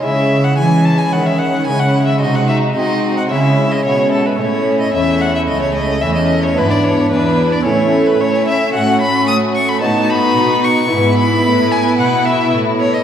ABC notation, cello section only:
X:1
M:4/4
L:1/8
Q:1/4=110
K:C#m
V:1 name="Cello section" clef=bass
C,2 E,2 D,2 C,2 | ^B,,2 ^B,2 C,2 =B,,2 | A,,2 E,,2 C,,2 E,,2 | G,,2 E,,2 A,,2 A,2 |
[K:E] A,,2 A,2 A,,2 B,,2 | G,,2 A,,2 B,,2 A,,2 |]